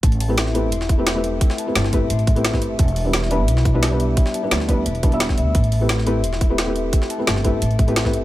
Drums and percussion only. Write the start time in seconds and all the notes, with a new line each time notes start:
0.03 kick, closed hi-hat
0.12 closed hi-hat
0.20 closed hi-hat, open hi-hat
0.38 snare, closed hi-hat
0.46 snare
0.55 closed hi-hat
0.72 closed hi-hat
0.81 snare
0.89 kick, closed hi-hat
1.07 snare, closed hi-hat
1.24 closed hi-hat
1.41 kick, closed hi-hat
1.50 snare
1.58 closed hi-hat
1.75 snare, closed hi-hat
1.84 snare
1.93 kick, closed hi-hat
2.10 closed hi-hat
2.19 closed hi-hat
2.27 kick, closed hi-hat
2.36 closed hi-hat
2.45 snare, closed hi-hat
2.53 kick, snare
2.62 closed hi-hat
2.79 kick, closed hi-hat
2.88 closed hi-hat
2.96 closed hi-hat, open hi-hat
3.13 snare, closed hi-hat
3.22 snare
3.31 closed hi-hat
3.48 closed hi-hat
3.57 snare
3.65 kick, closed hi-hat
3.83 snare, closed hi-hat
4.00 closed hi-hat
4.17 kick, closed hi-hat
4.26 snare
4.34 closed hi-hat
4.51 snare, closed hi-hat
4.60 snare
4.69 kick, closed hi-hat
4.86 closed hi-hat
4.95 closed hi-hat
5.03 kick, closed hi-hat
5.12 closed hi-hat
5.20 snare, closed hi-hat
5.29 kick, snare
5.38 closed hi-hat
5.55 kick, closed hi-hat
5.64 closed hi-hat
5.72 closed hi-hat, open hi-hat
5.89 snare, closed hi-hat
5.98 snare
6.07 closed hi-hat
6.24 closed hi-hat
6.33 snare
6.41 kick, closed hi-hat
6.58 snare, closed hi-hat
6.76 closed hi-hat
6.93 kick, closed hi-hat
7.02 snare
7.10 closed hi-hat
7.27 snare, closed hi-hat
7.36 snare
7.45 kick, closed hi-hat
7.62 closed hi-hat
7.71 closed hi-hat
7.79 kick, closed hi-hat
7.88 closed hi-hat
7.96 snare, closed hi-hat
8.05 kick, snare
8.13 closed hi-hat